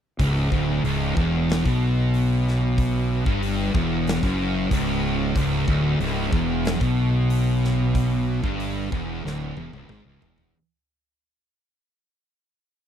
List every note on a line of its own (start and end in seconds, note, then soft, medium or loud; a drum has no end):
0.19 0.49 C#1 loud
0.19 0.51 C#2 loud
0.19 kick loud
0.19 open hi-hat medium
0.52 0.82 D1 medium
0.52 0.83 D2 loud
0.52 kick loud
0.84 1.14 C#1 medium
0.84 1.16 C#2 loud
0.84 open hi-hat medium
1.17 1.62 E1 loud
1.17 1.64 E2 loud
1.17 kick loud
1.50 snare loud
1.50 open hi-hat medium
1.65 3.22 B1 loud
1.65 3.25 B2 loud
1.65 kick loud
2.14 open hi-hat medium
2.48 snare soft
2.78 kick loud
2.78 open hi-hat medium
3.26 3.71 G1 medium
3.26 3.74 G2 loud
3.26 kick loud
3.43 open hi-hat medium
3.74 4.19 E1 loud
3.74 4.22 E2 loud
3.74 kick loud
4.07 snare loud
4.07 open hi-hat medium
4.23 4.68 F#1 loud
4.23 4.71 F#2 loud
4.23 kick loud
4.71 5.32 C#1 medium
4.71 5.35 C#2 loud
4.71 kick loud
4.71 open hi-hat medium
5.35 5.66 C#1 loud
5.35 5.67 C#2 loud
5.35 kick loud
5.35 open hi-hat medium
5.68 5.98 D1 medium
5.68 6.00 D2 loud
5.68 kick loud
6.00 6.30 C#1 medium
6.00 6.32 C#2 loud
6.00 open hi-hat medium
6.32 6.78 E1 medium
6.32 6.82 E2 loud
6.32 kick loud
6.65 snare loud
6.65 open hi-hat medium
6.81 8.39 B1 loud
6.81 8.42 B2 loud
6.81 kick loud
7.30 open hi-hat medium
7.64 snare soft
7.95 kick loud
7.95 open hi-hat medium
8.43 8.88 G1 medium
8.43 8.91 G2 loud
8.43 kick loud
8.60 open hi-hat medium
8.92 9.22 E1 medium
8.92 9.23 E2 loud
8.92 kick loud
9.25 9.54 D1 loud
9.25 9.56 D2 loud
9.25 snare medium
9.57 9.72 E1 medium
9.57 9.72 E2 loud
9.57 high tom medium
9.73 9.88 C#1 loud
9.73 9.88 C#2 loud
9.73 high tom medium
9.89 10.04 G#1 medium
9.89 10.05 G#2 loud
9.89 mid tom medium
10.05 10.20 C#1 medium
10.05 10.21 C#2 loud
10.21 10.52 E1 medium
10.21 10.53 E2 loud
10.21 floor tom loud
10.38 floor tom loud